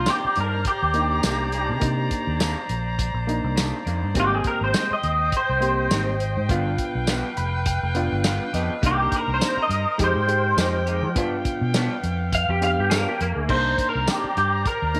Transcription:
Already playing: A#3 D4 D#4 C5 D5 A#5
0.06 C3 D#3 A#3 D4 G4, snare, closed hi-hat, tambourine
0.24 muted fingered electric bass stroke
0.35 G2 D#3 A#3 D4, closed hi-hat
0.40 A#4
0.65 G4, kick, closed hi-hat
0.82 D#2
0.94 A#3 D4 D#4, closed hi-hat
1.23 C2 C3 D#3 A#3 D4, snare, closed hi-hat, tambourine
1.52 D#3 A#3 D4, closed hi-hat
1.69 C3
1.80 C3 A#3 D4 D#4, kick, closed hi-hat
2.11 kick, closed hi-hat
2.27 D#2
2.39 C3 D#3 A#3 D4, snare, closed hi-hat, tambourine
2.69 A#1, closed hi-hat
2.99 kick, closed hi-hat
3.14 A#1
3.27 A#3 D4 D#4, closed hi-hat
3.44 C2
3.56 C3 D#3 A#3 D4, snare, closed hi-hat, tambourine
3.85 F2 D#3 A#3 D4, closed hi-hat
4.03 G2
4.15 G#1 G#2 G3 A#3 C4 D#4 G4 C5 D#5 G5, kick, closed hi-hat
4.20 G4
4.35 G#4
4.44 A#4, muted fingered electric bass stroke, kick, closed hi-hat
4.61 G#1 C5
4.74 G#2 G3 C4 D#4, snare, closed hi-hat, tambourine
4.91 D#5, muted fingered electric bass stroke
5.03 D#2, closed hi-hat
5.32 kick, closed hi-hat
5.37 C5
5.49 C2
5.60 A#3 C4 G4, closed hi-hat
5.90 G#1 G#2 G3 C4 D#4, snare, closed hi-hat, tambourine
6.20 closed hi-hat
6.37 G#2
6.49 G1 G2 F3 B3 D4 F4 B4 F5, kick, closed hi-hat
6.78 kick, closed hi-hat
6.95 B1
7.07 G2 F3 B3 D4, snare, closed hi-hat, tambourine
7.37 F1 B5, closed hi-hat
7.66 G5, kick, closed hi-hat
7.83 F1
7.95 B3 D4 F4, closed hi-hat
8.12 G1
8.24 G2 F3 B3 D4 F5, snare, closed hi-hat, tambourine
8.53 F2 F3 B3 D4 D#5, snare, closed hi-hat
8.70 muted fingered electric bass stroke
8.82 C2 C3 D#3 A#3 D4 D#4 A#4 C5 A#5, kick, closed hi-hat
8.86 G4
9.02 G4
9.12 kick, closed hi-hat
9.16 A#4
9.28 C2
9.34 C5
9.40 C3 D#3 A#3 D4, snare, closed hi-hat, tambourine
9.57 muted fingered electric bass stroke
9.62 D#5
9.69 G2, closed hi-hat
9.98 F2 F3 G#3 D#4 G4 G5, kick, closed hi-hat
10.04 C5
10.15 G#2
10.27 G#3 D#4 G4, closed hi-hat
10.57 F2 F3 G#3 D#4 G4, snare, closed hi-hat, tambourine
10.86 G#3 D#4 G4, closed hi-hat
11.02 F3
11.15 G2 F3 B3 D4 F4 F5, kick, closed hi-hat
11.45 kick, closed hi-hat
11.61 B2
11.74 G2 F3 B3 D4, snare, closed hi-hat, tambourine
12.03 F2, closed hi-hat
12.32 F5, kick, closed hi-hat
12.49 F2 G4
12.61 B3 D4 G4 F5, closed hi-hat
12.78 G2 G4
12.90 G2 F3 B3 D4 A#4 F5, snare, closed hi-hat, tambourine
13.09 G4
13.21 F2 A#3, closed hi-hat
13.36 D2 G#4
13.48 C2 C3 D#3 A#3 D4 D#4 C5 D5 A#5, kick, crash
13.78 kick, closed hi-hat
13.89 A#4
13.95 C2
14.07 C3 D#3 A#3 D4 G4, snare, closed hi-hat, tambourine
14.24 muted fingered electric bass stroke
14.37 G2 G4, closed hi-hat
14.66 A#4, kick, closed hi-hat
14.82 D#2
14.94 A#3 D4 D#4, closed hi-hat

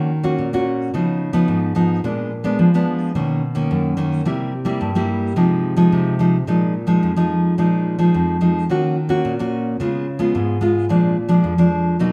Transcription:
Already playing: D#3
0.23 A#3 C#4 F#4
0.38 A#2
0.53 A#3 C#4 F#4
0.94 C#3 F3 B3 D#4
1.33 F3 B3 D#4
1.48 G#2
1.75 F3 B3 D#4
2.04 A#2 G#3 B3 D4
2.44 G#3 B3 D4
2.59 F3
2.74 G#3 B3 D4
3.15 B2 D#3 A#3 C#4
3.55 D#3 A#3 C#4
3.71 F#2
3.97 D#3 A#3 C#4
4.25 C3 G3 A#3 E4
4.65 G3 A#3 E4
4.81 G2
4.95 G3 A#3 E4
5.36 C3 F3 G#3 D#4
5.76 F3 G#3 D#4
5.92 C3
6.19 F3 G#3 D#4
6.47 A#2 F3 G#3 D#4
6.87 F3 G#3 D#4
7.03 F2
7.16 F3 G#3 D#4
7.58 A#2 F3 G#3 D#4
7.99 F3 G#3 D#4
8.14 F2
8.41 F3 G#3 D#4
8.69 D#3 A#3 C#4 F#4
9.09 A#3 C#4 F#4
9.25 A#2
9.39 A#3 C#4 F#4
9.80 C#3 G#3 B3 F4
10.19 G#3 B3 F4
10.35 G#2
10.61 G#3 B3 F4
10.89 A#2 F3 G#3 D4
11.29 F3 G#3 D4
11.44 F2
11.58 F3 G#3 D4
11.99 B2 F#3 A#3 D#4

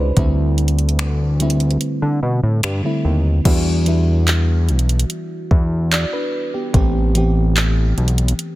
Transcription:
Already playing: C#2 D3 G3 B3 C4 D4 E4 F#4 B4 C5 D5
0.16 D2 D3 G3 A3 C4 E4, kick, closed hi-hat
0.58 closed hi-hat
0.68 closed hi-hat
0.79 closed hi-hat
0.89 closed hi-hat
0.99 finger snap, closed hi-hat
1.40 D3 G3 A3 C4 E4, closed hi-hat
1.50 closed hi-hat
1.60 closed hi-hat
1.71 closed hi-hat
1.81 closed hi-hat
2.02 D3
2.23 B2
2.43 A2
2.63 G2, finger snap, closed hi-hat
2.83 D3 G3 A3 C4 E4
3.05 D#2
3.44 E2 E3 G3 B3 D4 F#4, kick, closed hi-hat, crash
3.86 E3 G3 B3 D4 E4, closed hi-hat
4.28 clap, closed hi-hat
4.69 B1, closed hi-hat
4.79 closed hi-hat
4.89 closed hi-hat
4.99 closed hi-hat
5.10 closed hi-hat
5.51 E2, kick
5.92 F#4 D5, clap, closed hi-hat
6.13 D4 B4
6.54 B3 G4
6.73 A1 E3 A3 B3 C4 G4, kick, closed hi-hat
7.15 E3 A3 B3 C4 G4, closed hi-hat
7.57 clap, closed hi-hat
7.98 B1, closed hi-hat
8.08 closed hi-hat
8.18 closed hi-hat
8.28 closed hi-hat
8.39 closed hi-hat

